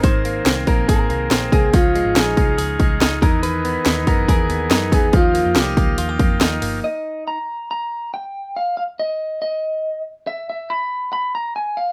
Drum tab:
HH |oooooooo|oooooooo|oooooooo|oooooooo|
SD |--o---o-|--o---o-|--o---o-|--o---o-|
BD |o--oo--o|o--o-o-o|---oo--o|o--o-o--|

HH |--------|--------|--------|
SD |--------|--------|--------|
BD |--------|--------|--------|